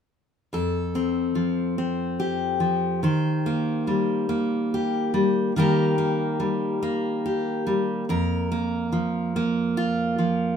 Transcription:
0.53 3.05 F2 medium
0.53 3.00 A4 soft
0.95 1.78 C4 soft
1.35 2.59 F3 soft
1.78 3.00 C4 soft
2.20 4.74 G4 soft
2.60 3.04 F3 soft
3.03 5.51 D#3 medium
3.03 5.52 C5 soft
3.46 4.29 A#3 soft
3.87 5.13 G3 soft
4.29 5.57 A#3 soft
4.74 5.53 G4 soft
5.14 5.51 G3 soft
5.56 8.04 D#3 medium
5.56 6.38 G3 soft
5.56 5.98 A#3 soft
5.56 7.24 G4 soft
5.56 8.06 A#4 medium
5.98 6.82 A#3 soft
6.40 7.65 G3 soft
6.83 8.50 A#3 soft
7.26 8.05 G4 soft
7.67 8.04 G3 soft
8.09 10.57 F2 medium
8.09 10.57 A#4 medium
8.52 9.35 A#3 soft
8.92 10.17 F3 medium
9.36 10.57 A#3 soft
9.77 10.56 F4 soft
10.18 10.57 F3 soft

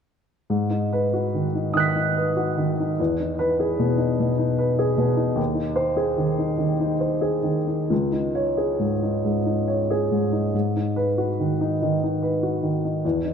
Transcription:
0.50 1.71 G#2 soft
0.70 1.04 D#4 soft
0.93 1.26 B4 soft
1.14 1.46 F#4 soft
1.34 1.67 D#3 soft
1.55 1.88 D#4 soft
1.74 2.08 D#3 soft
1.74 2.94 D#6 soft
1.74 2.96 F#6 soft
1.80 2.97 B6 soft
1.96 2.29 D#4 soft
2.16 2.49 B4 soft
2.37 2.70 F#4 soft
2.58 2.90 D#3 soft
2.80 3.00 D#4 soft
3.00 4.16 E2 soft
3.20 3.52 D#4 soft
3.39 3.71 B4 soft
3.60 3.91 G#4 soft
3.79 4.11 B2 soft
3.98 4.31 D#4 soft
4.20 4.52 B2 soft
4.38 4.71 D#4 soft
4.59 4.91 B4 soft
4.79 5.11 G#4 soft
4.98 5.30 B2 soft
5.17 5.37 D#4 soft
5.35 6.55 D#2 soft
5.55 5.88 D#4 soft
5.76 6.09 C5 soft
5.97 6.30 G#4 soft
6.18 6.51 D#3 soft
6.39 6.72 D#4 soft
6.58 6.93 D#3 soft
6.80 7.15 D#4 soft
7.00 7.36 C5 soft
7.21 7.58 G#4 soft
7.43 7.80 D#3 soft
7.67 7.90 D#4 soft
7.90 9.19 C#2 soft
8.12 8.48 D#4 soft
8.35 8.70 C#5 soft
8.57 8.92 G#4 soft
8.79 9.14 G#2 soft
9.03 9.37 D#4 soft
9.25 9.59 G#2 soft
9.46 9.80 D#4 soft
9.68 10.02 C#5 soft
9.90 10.25 G#4 soft
10.11 10.46 G#2 soft
10.32 10.54 D#4 soft
10.54 11.76 G#2 soft
10.76 11.09 D#4 soft
10.96 11.30 B4 soft
11.18 11.51 F#4 soft
11.40 11.73 D#3 soft
11.61 11.93 D#4 soft
11.82 12.14 D#3 soft
12.03 12.35 D#4 soft
12.23 12.55 B4 soft
12.43 12.76 F#4 soft
12.63 12.96 D#3 soft
12.85 13.04 D#4 soft
13.05 13.34 E2 soft
13.25 13.34 D#4 soft

